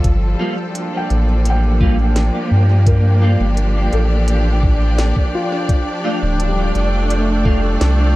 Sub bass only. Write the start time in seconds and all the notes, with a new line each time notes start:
0.04 G1
1.10 A1
2.51 G2
3.40 G1
3.93 A1
6.22 D1
6.75 F1
7.81 C2